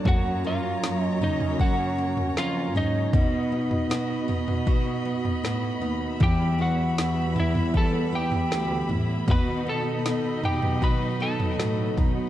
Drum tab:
SD |----o-------o---|----o-------o---|----o-------o---|----o-------o---|
FT |o-----oo---o--o-|o--o--oo---o----|o-----oo---o--o-|o-----oo---o--o-|
BD |o-------o-------|o-------o-------|o-------o-------|o-------o-----o-|